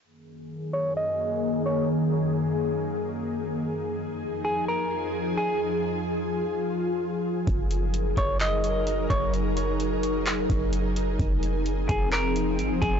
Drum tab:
HH |--------|--------|--------|--------|
CP |--------|--------|--------|--------|
BD |--------|--------|--------|--------|

HH |xxxxxxxx|xxxxxxxx|xxxxxxxx|
CP |----x---|----x---|----x---|
BD |o--o---o|-----o--|o--o---o|